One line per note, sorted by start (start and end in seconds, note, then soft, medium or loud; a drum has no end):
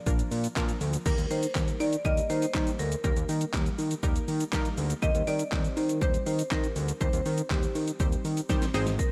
0.00 0.52 D5 medium
0.06 0.23 A#1 loud
0.06 0.36 F3 medium
0.06 0.36 A#3 medium
0.06 0.36 D4 medium
0.06 0.36 F4 medium
0.06 0.36 A#4 medium
0.06 kick loud
0.06 shaker medium
0.19 closed hi-hat medium
0.19 shaker medium
0.31 0.48 A#2 loud
0.31 open hi-hat medium
0.31 shaker medium
0.44 closed hi-hat medium
0.44 shaker medium
0.56 0.72 A#2 loud
0.56 0.85 F3 loud
0.56 0.85 A#3 medium
0.56 0.85 D4 medium
0.56 0.86 F4 medium
0.56 0.86 A#4 loud
0.56 kick loud
0.56 snare medium
0.56 clap loud
0.56 shaker medium
0.69 closed hi-hat medium
0.69 shaker medium
0.81 0.97 D2 medium
0.81 open hi-hat medium
0.81 shaker medium
0.93 closed hi-hat medium
0.93 shaker medium
1.06 1.14 D#2 loud
1.06 1.35 G3 medium
1.06 1.35 A#3 medium
1.06 1.35 D#4 medium
1.06 1.35 G4 medium
1.06 1.31 A#4 loud
1.06 1.35 A#4 medium
1.06 kick loud
1.06 crash loud
1.06 shaker medium
1.18 1.26 D#2 loud
1.18 closed hi-hat medium
1.18 shaker medium
1.31 1.47 D#3 loud
1.31 1.82 C5 loud
1.31 open hi-hat medium
1.31 shaker medium
1.43 closed hi-hat medium
1.43 shaker medium
1.55 1.71 D#2 loud
1.55 1.85 G3 medium
1.55 1.85 A#3 medium
1.55 1.85 D#4 medium
1.55 1.85 G4 medium
1.55 1.85 A#4 medium
1.55 kick loud
1.55 snare medium
1.55 clap loud
1.55 shaker medium
1.68 closed hi-hat medium
1.68 shaker medium
1.80 1.96 D#3 loud
1.80 2.06 D5 loud
1.80 open hi-hat medium
1.80 shaker medium
1.93 closed hi-hat medium
1.93 shaker medium
2.05 2.21 D#2 loud
2.05 2.34 G3 medium
2.05 2.34 A#3 medium
2.05 2.34 D#4 medium
2.05 2.34 G4 medium
2.05 2.34 A#4 medium
2.05 2.31 D#5 loud
2.05 kick loud
2.05 shaker medium
2.17 closed hi-hat medium
2.17 shaker medium
2.30 2.46 D#3 loud
2.30 2.81 C5 loud
2.30 open hi-hat medium
2.30 shaker medium
2.42 closed hi-hat medium
2.42 shaker medium
2.54 2.71 D#3 loud
2.54 2.84 G3 medium
2.54 2.84 A#3 medium
2.54 2.84 D#4 medium
2.54 2.84 G4 medium
2.54 2.84 C5 loud
2.54 kick loud
2.54 snare medium
2.54 clap loud
2.54 shaker medium
2.67 closed hi-hat medium
2.67 shaker medium
2.79 2.95 D2 medium
2.79 3.03 A#4 loud
2.79 open hi-hat medium
2.79 shaker medium
2.92 closed hi-hat medium
2.92 shaker medium
3.04 3.12 D#2 loud
3.04 3.33 G3 medium
3.04 3.33 A#3 medium
3.04 3.33 D#4 medium
3.04 3.33 G4 medium
3.04 4.49 A#4 medium
3.04 3.34 A#4 medium
3.04 kick loud
3.04 shaker medium
3.17 3.25 D#2 loud
3.17 closed hi-hat medium
3.17 shaker medium
3.29 3.45 D#3 loud
3.29 open hi-hat medium
3.29 shaker medium
3.41 closed hi-hat medium
3.41 shaker medium
3.53 3.70 D#2 loud
3.53 3.83 G3 medium
3.53 3.83 A#3 medium
3.53 3.83 D#4 medium
3.53 3.83 G4 medium
3.53 3.83 A#4 medium
3.53 kick loud
3.53 snare medium
3.53 clap loud
3.53 shaker medium
3.66 closed hi-hat medium
3.66 shaker medium
3.78 3.95 D#3 loud
3.78 open hi-hat medium
3.78 shaker medium
3.91 closed hi-hat medium
3.91 shaker medium
4.03 4.19 D#2 loud
4.03 4.32 G3 medium
4.03 4.32 A#3 medium
4.03 4.33 D#4 medium
4.03 4.33 G4 medium
4.03 4.33 A#4 medium
4.03 kick loud
4.03 shaker medium
4.16 closed hi-hat medium
4.16 shaker medium
4.28 4.44 D#3 loud
4.28 open hi-hat medium
4.28 shaker medium
4.40 closed hi-hat medium
4.40 shaker medium
4.53 4.69 D#3 loud
4.53 4.82 G3 loud
4.53 4.82 A#3 loud
4.53 4.82 D#4 loud
4.53 4.82 G4 loud
4.53 4.82 A#4 loud
4.53 kick loud
4.53 snare medium
4.53 clap loud
4.53 shaker medium
4.65 closed hi-hat medium
4.65 shaker medium
4.77 4.94 D2 medium
4.77 open hi-hat medium
4.77 shaker medium
4.90 closed hi-hat medium
4.90 shaker medium
5.02 5.11 D#2 loud
5.02 5.32 G3 medium
5.02 5.32 C4 medium
5.02 5.32 D#4 medium
5.02 5.32 G4 medium
5.02 5.32 C5 medium
5.02 5.28 D#5 loud
5.02 kick loud
5.02 shaker medium
5.15 5.23 D#2 loud
5.15 closed hi-hat medium
5.15 shaker medium
5.27 5.43 D#3 loud
5.27 5.78 D5 loud
5.27 open hi-hat medium
5.27 shaker medium
5.39 closed hi-hat medium
5.39 shaker medium
5.52 5.68 D#2 loud
5.52 5.81 G3 medium
5.52 5.81 C4 medium
5.52 5.81 D#4 medium
5.52 5.81 G4 medium
5.52 5.81 C5 medium
5.52 kick loud
5.52 snare medium
5.52 clap loud
5.52 shaker medium
5.64 closed hi-hat medium
5.64 shaker medium
5.77 6.03 D#3 loud
5.77 5.88 C5 loud
5.77 open hi-hat medium
5.77 shaker medium
5.89 closed hi-hat medium
5.89 shaker medium
6.01 6.18 D#2 loud
6.01 6.31 G3 medium
6.01 6.31 C4 medium
6.01 6.31 D#4 medium
6.01 6.31 G4 medium
6.01 6.25 C5 loud
6.01 6.31 C5 medium
6.01 kick loud
6.01 shaker medium
6.14 closed hi-hat medium
6.14 shaker medium
6.26 6.43 D#3 loud
6.26 6.49 C5 loud
6.26 open hi-hat medium
6.26 shaker medium
6.39 closed hi-hat medium
6.39 shaker medium
6.51 6.67 D#3 loud
6.51 6.80 G3 medium
6.51 6.80 C4 medium
6.51 6.80 D#4 medium
6.51 6.81 G4 medium
6.51 7.02 A#4 loud
6.51 6.81 C5 medium
6.51 kick loud
6.51 snare medium
6.51 clap loud
6.51 shaker medium
6.64 closed hi-hat medium
6.64 shaker medium
6.76 6.92 D2 loud
6.76 open hi-hat medium
6.76 shaker medium
6.88 closed hi-hat medium
6.88 shaker medium
7.01 7.09 D#2 loud
7.01 7.30 G3 medium
7.01 7.30 C4 medium
7.01 7.30 D#4 medium
7.01 7.30 G4 medium
7.01 7.52 C5 loud
7.01 7.30 C5 medium
7.01 kick loud
7.01 shaker medium
7.13 7.21 D#2 loud
7.13 closed hi-hat medium
7.13 shaker medium
7.26 7.42 D#3 loud
7.26 open hi-hat medium
7.26 shaker medium
7.38 closed hi-hat medium
7.38 shaker medium
7.50 7.66 D#2 loud
7.50 7.80 G3 medium
7.50 7.80 C4 medium
7.50 7.80 D#4 medium
7.50 8.46 G4 medium
7.50 7.80 G4 medium
7.50 7.80 C5 medium
7.50 kick loud
7.50 snare loud
7.50 clap loud
7.50 shaker medium
7.63 closed hi-hat medium
7.63 shaker medium
7.75 7.91 D#3 loud
7.75 open hi-hat medium
7.75 shaker medium
7.88 closed hi-hat medium
7.88 shaker medium
8.00 8.16 D#2 loud
8.00 8.29 G3 medium
8.00 8.29 C4 medium
8.00 8.29 D#4 medium
8.00 8.29 G4 medium
8.00 8.29 C5 medium
8.00 kick loud
8.00 shaker medium
8.12 closed hi-hat medium
8.12 shaker medium
8.25 8.41 D#3 loud
8.25 open hi-hat medium
8.25 shaker medium
8.37 closed hi-hat medium
8.37 shaker medium
8.49 8.66 D#3 loud
8.49 8.74 G3 loud
8.49 8.73 C4 medium
8.49 8.73 D#4 medium
8.49 8.74 G4 loud
8.49 8.73 C5 loud
8.49 kick loud
8.49 snare medium
8.49 shaker medium
8.62 snare medium
8.62 closed hi-hat medium
8.62 shaker medium
8.74 8.99 G#1 medium
8.74 9.12 G#3 loud
8.74 9.12 C4 medium
8.74 9.12 D#4 medium
8.74 9.12 G#4 medium
8.74 9.12 C5 loud
8.74 snare medium
8.74 open hi-hat medium
8.74 shaker medium
8.87 snare loud
8.87 closed hi-hat medium
8.87 shaker medium
8.99 9.12 A#4 loud
8.99 kick loud
8.99 shaker medium